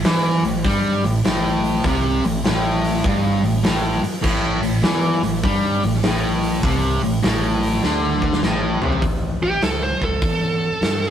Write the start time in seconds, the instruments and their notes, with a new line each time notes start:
0.03 fingered electric bass E2, distorted electric guitar E3, snare, open hi-hat
0.43 fingered electric bass A1, distorted electric guitar A2, open hi-hat
0.64 fingered electric bass G2, distorted electric guitar G3, kick, open hi-hat
1.03 fingered electric bass A1, distorted electric guitar A2, open hi-hat
1.24 fingered electric bass A1, distorted electric guitar A2, snare, open hi-hat
1.64 open hi-hat
1.84 fingered electric bass C2, distorted electric guitar C3, kick, open hi-hat
2.24 fingered electric bass A1, distorted electric guitar A2, open hi-hat
2.44 fingered electric bass A1, distorted electric guitar A2, snare, open hi-hat
2.84 open hi-hat
3.04 fingered electric bass G1, distorted electric guitar G2, kick, open hi-hat
3.43 fingered electric bass A1, distorted electric guitar A2, open hi-hat
3.63 fingered electric bass A1, distorted electric guitar A2, snare, open hi-hat
4.04 muted distorted electric guitar stroke, open hi-hat
4.22 fingered electric bass A1, distorted electric guitar A2, kick, crash
4.62 fingered electric bass A1, distorted electric guitar A2, open hi-hat
4.83 fingered electric bass E2, distorted electric guitar E3, snare, open hi-hat
5.23 fingered electric bass A1, distorted electric guitar A2, open hi-hat
5.43 fingered electric bass G2, distorted electric guitar G3, kick, open hi-hat
5.83 fingered electric bass A1, distorted electric guitar A2, open hi-hat
5.94 snare
6.03 fingered electric bass A1, distorted electric guitar A2, snare, open hi-hat
6.43 open hi-hat
6.63 fingered electric bass C2, distorted electric guitar C3, kick, open hi-hat
7.03 fingered electric bass A1, distorted electric guitar A2, open hi-hat
7.23 fingered electric bass A1, distorted electric guitar A2, snare, open hi-hat
7.63 open hi-hat
7.82 fingered electric bass D2, distorted electric guitar D3, snare
8.22 kick
8.33 snare
8.41 fingered electric bass A1, distorted electric guitar A2, snare
8.82 fingered electric bass C2, distorted electric guitar C3, floor tom
8.92 floor tom
9.02 fingered electric bass A1, kick, open hi-hat
9.41 fingered electric bass A1, lead electric guitar G4
9.61 fingered electric bass C#2, lead electric guitar A4, snare, open hi-hat
9.83 lead electric guitar C5
10.01 fingered electric bass C#2, lead electric guitar A4, kick
10.22 fingered electric bass E2, kick, open hi-hat
10.81 fingered electric bass G2, snare, open hi-hat
11.04 snare